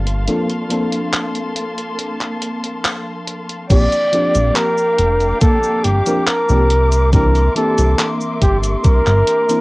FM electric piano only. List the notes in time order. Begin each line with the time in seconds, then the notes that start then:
0.27 F3 A#3 C4 D4 A4
0.69 F3 A#3 C4 D4 A4
3.70 F3 A#3 C4 D4 G4
4.12 F3 A#3 C4 D4 G4
6.06 F3 A#3 C4 D4 A#4
6.49 F3 A#3 C4 D4 G4
7.13 E3 A#3 C4 D4 G4
7.55 E3 A#3 C4 D4 G4
9.49 E3 A#3 C4 D4 E4